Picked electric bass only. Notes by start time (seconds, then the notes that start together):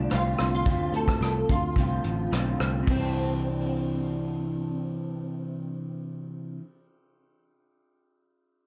0.12 C2
0.40 C2
0.66 D2
0.92 D2
1.21 C2
1.50 D2
1.76 C2
2.05 A1
2.32 B1
2.60 C2
2.87 C2